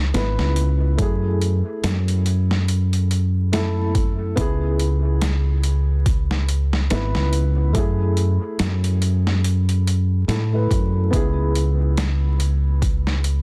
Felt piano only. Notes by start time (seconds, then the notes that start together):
Already playing: E4 G#4
0.14 B3 E4 B4
0.97 A3 E4
1.02 G#4
3.52 A3 E4 A4
4.36 B3 E4
4.40 G#4
6.90 B3 E4 B4
7.73 A3 E4
7.78 G#4
10.28 A3 E4 A4
10.52 A3 E4 B4
11.11 B3 E4
11.15 G#4